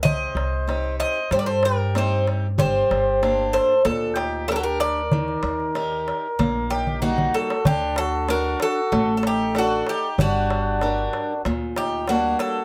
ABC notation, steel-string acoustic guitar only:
X:1
M:4/4
L:1/8
Q:1/4=95
K:none
V:1 name="Steel-string acoustic guitar"
C,2 [C_EG]2 G,2 [CEG]2 | G,2 [_B,DG]2 _B,,2 [DG_B]2 | _E,2 [_EG_B]2 _B,2 [G,B,E]2 | D,2 [D^F]2 A,2 [Ad^f]2 |
G,2 [G,D_B]2 _B,,2 [G,_B,D]2 |]